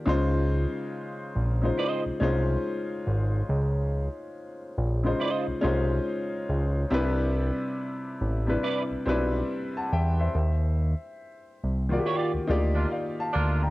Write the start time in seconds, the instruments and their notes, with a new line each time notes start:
0.06 analog synth bass C#2, grand piano C#3 G#3 D#4 F4 C5
1.36 analog synth bass A#1
1.62 grand piano C#3 G#3 D#4 F4 C5
1.78 clean electric guitar F4 C5 D#5
2.06 analog synth bass C2
2.20 analog synth bass C2, grand piano G#3 C#4 D#4 F4 C5
3.07 analog synth bass G#1
3.49 analog synth bass C#2
4.78 analog synth bass A#1
5.03 grand piano C#3 G#3 D#4 F4 C5
5.20 clean electric guitar F4 C5 D#5
5.48 analog synth bass C2
5.61 analog synth bass C2, grand piano G#3 C#4 D#4 F4 C5
6.49 analog synth bass C#2
6.90 analog synth bass C2, grand piano C3 G3 D4 E4 B4
8.21 analog synth bass A1
8.46 grand piano C3 G3 D4 E4 B4
8.63 clean electric guitar E4 B4 D5
8.91 analog synth bass B1
9.06 analog synth bass B1, grand piano G3 C4 D4 E4 B4
9.77 grand piano F#5 A5
9.92 analog synth bass E2, grand piano E5 G5
10.20 grand piano C5 E5
10.35 analog synth bass D#2
11.64 analog synth bass C2
11.89 grand piano D#3 A#3 F4 F#4 D5
11.99 grand piano G4
12.06 clean electric guitar F4 G4 D5
12.34 analog synth bass D2
12.47 analog synth bass D2, grand piano A#3 D#4 F4 G4 D5
12.75 horn section A#3 D4 F4
12.92 grand piano D5 F5
13.20 grand piano F5 A5
13.33 analog synth bass D2, horn section A#3 D4 F4
13.63 grand piano G5 A#5